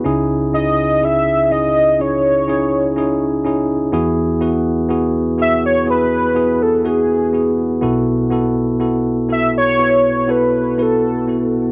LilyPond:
<<
  \new Staff \with { instrumentName = "Soft synth lead" } { \time 4/4 \key e \major \tempo 4 = 62 r8 dis''8 e''8 dis''8 cis''4. r8 | r4. e''16 cis''16 b'8. a'16 gis'8. r16 | r4. e''16 cis''8. b'8 a'8. r16 | }
  \new Staff \with { instrumentName = "Tine electric piano" } { \time 4/4 \key e \major <cis' dis' e' gis'>8 <cis' dis' e' gis'>8 <cis' e' gis'>8 <cis' dis' e' gis'>8 <cis' dis' e' gis'>8 <cis' dis' e' gis'>8 <cis' dis' e' gis'>8 <cis' dis' e' gis'>8 | <b e' fis' gis'>8 <b e' fis' b'>8 <b e' fis' gis'>8 <b e' fis' gis'>8 <b e' fis' gis'>8 <b e' fis' gis'>8 <b e' fis' b'>8 <b e' fis' gis'>8 | <b e' fis' a'>8 <b e' fis' a'>8 <b e' fis' a'>8 <b e' fis' a'>8 <b e' fis' b'>8 <b e' fis' a'>8 <b e' fis' b'>8 <b e' fis' a'>8 | }
  \new Staff \with { instrumentName = "Tine electric piano" } { \clef bass \time 4/4 \key e \major <cis, cis>1 | <e, e>1 | <b,, b,>1 | }
>>